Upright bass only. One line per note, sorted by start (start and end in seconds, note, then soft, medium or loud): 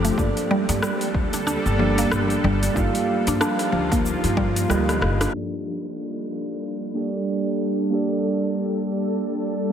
0.18 0.30 G1 medium
0.69 0.78 G2 loud
1.14 1.55 D2 medium
1.66 2.04 G1 medium
2.12 2.34 G1 medium
2.44 2.66 G1 loud
2.76 2.88 G1 medium
3.27 3.36 G2 medium
3.73 4.13 D2 medium
4.24 4.62 G2 medium
4.70 5.03 D2 medium
5.01 5.24 G1 medium